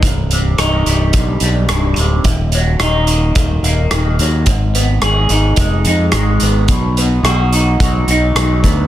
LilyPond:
<<
  \new Staff \with { instrumentName = "Clean electric guitar" } { \clef bass \time 4/4 \key c \minor \tempo 4 = 108 c,8 c8 ees'8 g8 g,8 g8 g,8 c8 | ees,8 ges8 ees'8 bes8 ees8 bes8 ees8 ges8 | aes,8 ces'8 aes'8 ees'8 aes8 ees'8 aes8 ces'8 | b,8 b8 fis'8 dis'8 fis8 dis'8 fis8 b8 | }
  \new Staff \with { instrumentName = "Fingered electric bass" } { \clef bass \time 4/4 \key c \minor c,,4 c,,8 c,,8 b,,8 b,,8 c,,8 d,,8 | ees,,4 ees,,4 ees,,8 ees,,8 ees,,8 ees,8 | aes,,4 aes,,8 aes,,8 f,,8 f,8 aes,,8 aes,,8 | b,,4 b,,4 b,,8 b,,8 b,,8 d,8 | }
  \new DrumStaff \with { instrumentName = "Drums" } \drummode { \time 4/4 <hh bd>8 hh8 <hh ss>8 hh8 <hh bd>8 hh8 <hh ss>8 hh8 | <hh bd>8 hh8 <hh ss>8 hh8 <hh bd>8 hh8 <hh ss>8 hh8 | <hh bd>8 hh8 <hh ss>8 hh8 <hh bd>8 hh8 <hh ss>8 hh8 | <hh bd>8 hh8 <hh ss>8 hh8 <hh bd>8 hh8 <hh ss>8 <hh bd>8 | }
>>